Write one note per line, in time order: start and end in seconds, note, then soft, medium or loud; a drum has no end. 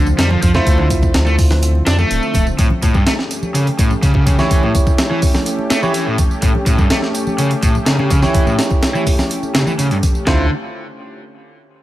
0.00 0.14 D2 loud
0.00 2.55 D3 medium
0.00 2.55 F3 medium
0.00 2.55 C4 medium
0.06 tambourine soft
0.06 high conga medium
0.18 0.37 F2 medium
0.18 0.27 G3 loud
0.18 snare loud
0.18 closed hi-hat medium
0.18 tambourine soft
0.30 0.41 F3 medium
0.30 muted conga medium
0.42 0.61 F2 medium
0.42 0.51 F3 medium
0.42 kick loud
0.42 closed hi-hat medium
0.42 tambourine medium
0.42 high conga medium
0.54 0.77 A3 loud
0.54 1.96 E4 medium
0.54 1.96 F4 medium
0.54 1.96 C5 medium
0.54 snare soft
0.54 tambourine soft
0.54 low conga medium
0.66 1.10 D2 loud
0.66 kick loud
0.66 closed hi-hat medium
0.66 tambourine soft
0.78 0.87 D3 medium
0.78 high conga loud
0.90 kick medium
0.90 closed hi-hat medium
0.90 tambourine medium
1.03 kick loud
1.03 tambourine soft
1.03 muted conga medium
1.14 1.82 D2 loud
1.14 snare loud
1.14 closed hi-hat medium
1.14 tambourine soft
1.14 high conga medium
1.26 1.35 A3 medium
1.26 tambourine soft
1.39 kick medium
1.39 open hi-hat medium
1.39 tambourine medium
1.51 snare soft
1.51 tambourine soft
1.51 high conga loud
1.63 closed hi-hat medium
1.63 tambourine soft
1.75 muted conga soft
1.86 2.05 F2 medium
1.86 1.95 D4 loud
1.86 snare loud
1.86 closed hi-hat medium
1.86 tambourine medium
1.98 2.46 A3 loud
1.98 tambourine soft
1.98 high conga medium
2.10 2.20 D1 loud
2.10 closed hi-hat medium
2.10 tambourine soft
2.23 tambourine soft
2.34 2.53 D1 medium
2.34 kick medium
2.34 closed hi-hat medium
2.34 tambourine medium
2.34 high conga medium
2.47 tambourine soft
2.59 2.67 A2 medium
2.59 10.23 A3 medium
2.59 10.23 C#4 medium
2.59 10.23 G4 medium
2.59 kick loud
2.59 closed hi-hat medium
2.59 tambourine soft
2.70 high conga medium
2.82 2.94 A2 medium
2.82 kick medium
2.82 closed hi-hat medium
2.82 tambourine medium
2.94 3.03 G2 loud
2.94 kick medium
2.94 tambourine soft
2.94 muted conga medium
3.06 3.12 A3 loud
3.06 snare loud
3.06 closed hi-hat medium
3.06 tambourine soft
3.06 high conga medium
3.19 snare soft
3.31 closed hi-hat medium
3.31 tambourine medium
3.43 tambourine soft
3.43 high conga medium
3.54 3.66 C#3 medium
3.54 closed hi-hat medium
3.54 tambourine soft
3.67 closed hi-hat soft
3.79 3.90 A2 medium
3.79 kick loud
3.79 closed hi-hat medium
3.79 tambourine medium
3.91 tambourine soft
3.91 high conga medium
4.02 4.11 C#3 loud
4.02 kick medium
4.02 closed hi-hat medium
4.02 tambourine soft
4.14 4.25 C#3 medium
4.14 kick medium
4.14 muted conga medium
4.27 4.35 C#3 medium
4.27 kick loud
4.27 closed hi-hat medium
4.27 tambourine medium
4.27 high conga medium
4.39 4.62 E3 loud
4.39 5.80 E4 medium
4.39 5.80 G4 medium
4.39 5.80 C#5 medium
4.39 snare soft
4.39 tambourine soft
4.39 low conga medium
4.51 kick loud
4.51 closed hi-hat medium
4.51 tambourine soft
4.63 4.72 A2 medium
4.63 high conga medium
4.75 kick medium
4.75 closed hi-hat medium
4.75 tambourine medium
4.87 kick loud
4.87 tambourine soft
4.87 muted conga medium
4.98 snare loud
4.98 closed hi-hat medium
4.98 tambourine soft
4.98 high conga medium
5.11 5.20 E3 loud
5.22 kick loud
5.22 open hi-hat medium
5.22 tambourine medium
5.34 snare soft
5.34 tambourine soft
5.34 high conga medium
5.46 closed hi-hat medium
5.46 tambourine soft
5.59 muted conga soft
5.70 5.79 A3 loud
5.70 snare loud
5.70 closed hi-hat medium
5.70 tambourine medium
5.83 6.06 E3 loud
5.83 5.92 E4 medium
5.83 5.92 G4 medium
5.83 5.92 C#5 medium
5.83 tambourine soft
5.83 high conga medium
5.94 closed hi-hat medium
5.94 tambourine soft
6.07 6.15 A2 loud
6.18 kick medium
6.18 closed hi-hat medium
6.18 tambourine medium
6.18 high conga medium
6.31 tambourine soft
6.42 6.51 A2 medium
6.42 kick loud
6.42 closed hi-hat medium
6.42 tambourine soft
6.55 high conga medium
6.66 6.78 A2 medium
6.66 kick loud
6.66 closed hi-hat medium
6.66 tambourine medium
6.78 6.87 G2 loud
6.78 kick loud
6.78 tambourine soft
6.78 muted conga medium
6.90 6.96 A3 loud
6.90 snare loud
6.90 closed hi-hat medium
6.90 tambourine soft
6.90 high conga medium
7.02 snare soft
7.15 closed hi-hat medium
7.15 tambourine medium
7.27 tambourine soft
7.27 high conga medium
7.38 7.50 C#3 medium
7.38 closed hi-hat medium
7.38 tambourine soft
7.51 closed hi-hat soft
7.63 7.74 A2 medium
7.63 kick loud
7.63 closed hi-hat medium
7.63 tambourine medium
7.75 tambourine soft
7.75 high conga medium
7.86 7.95 C#3 loud
7.86 snare loud
7.86 closed hi-hat medium
7.86 tambourine soft
7.99 8.10 C#3 medium
7.99 muted conga medium
8.10 8.20 C#3 medium
8.10 kick loud
8.10 closed hi-hat medium
8.10 tambourine medium
8.10 high conga medium
8.22 8.46 E3 loud
8.22 9.64 E4 medium
8.22 9.64 G4 medium
8.22 9.64 C#5 medium
8.22 snare soft
8.22 tambourine soft
8.22 low conga medium
8.34 kick loud
8.34 closed hi-hat medium
8.34 tambourine soft
8.46 8.55 A2 medium
8.46 tambourine soft
8.46 high conga medium
8.59 snare loud
8.59 closed hi-hat medium
8.59 tambourine medium
8.70 kick loud
8.70 tambourine soft
8.70 muted conga medium
8.83 snare loud
8.83 closed hi-hat medium
8.83 tambourine soft
8.83 high conga medium
8.95 9.03 E3 loud
8.95 tambourine soft
9.07 kick medium
9.07 open hi-hat medium
9.07 tambourine medium
9.19 snare medium
9.19 tambourine soft
9.19 high conga medium
9.31 closed hi-hat medium
9.31 tambourine soft
9.43 tambourine soft
9.43 muted conga medium
9.55 9.60 C#3 loud
9.55 snare loud
9.55 closed hi-hat medium
9.55 tambourine medium
9.66 9.72 E3 medium
9.66 tambourine soft
9.66 high conga medium
9.79 9.87 C#3 loud
9.79 closed hi-hat medium
9.79 tambourine soft
9.91 9.96 G2 medium
9.91 closed hi-hat soft
10.03 kick medium
10.03 closed hi-hat medium
10.03 tambourine medium
10.03 high conga medium
10.15 tambourine soft
10.27 10.49 D2 medium
10.27 10.49 D3 medium
10.27 10.45 E4 medium
10.27 10.45 F4 medium
10.27 10.45 C5 medium
10.27 kick loud
10.27 snare loud